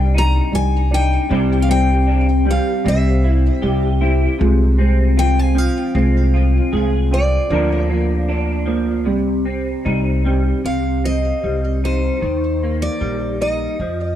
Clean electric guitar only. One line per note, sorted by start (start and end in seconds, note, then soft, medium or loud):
0.00 1.29 C3 medium
0.00 1.26 G3 medium
0.00 1.26 D4 medium
0.00 0.13 D#4 medium
0.14 0.91 D#4 medium
0.92 1.25 D#4 medium
1.29 4.37 C3 medium
1.29 2.45 G3 medium
1.29 1.69 C4 medium
1.29 2.06 E4 medium
1.29 3.61 G4 medium
1.69 2.85 C4 medium
2.07 2.26 D4 medium
2.46 4.34 G3 medium
2.85 4.35 C4 medium
3.24 4.00 E4 medium
3.62 4.39 G4 medium
4.01 4.35 E4 medium
4.39 5.55 C3 medium
4.78 5.94 C4 medium
5.17 6.33 F4 medium
5.55 7.50 F3 medium
5.95 7.46 C4 medium
6.34 7.11 F4 medium
6.73 7.46 G#4 medium
7.12 7.46 F4 medium
7.51 9.02 D3 medium
7.51 8.64 F3 medium
7.51 7.89 A#3 medium
7.51 8.27 D4 medium
7.51 9.03 A#4 medium
7.90 9.07 A#3 medium
8.28 9.07 D4 medium
8.66 9.06 F3 medium
9.05 10.63 C3 medium
9.45 10.60 C4 medium
9.85 10.60 D#4 medium
10.25 10.60 G3 medium
10.65 12.21 C3 medium
11.04 12.18 C4 medium
11.44 12.18 G3 medium
11.84 13.41 D#4 soft
12.21 13.74 D#3 medium
12.63 13.80 A#3 soft
13.01 13.75 G3 medium
13.41 13.76 D#4 medium
13.81 14.15 F3 medium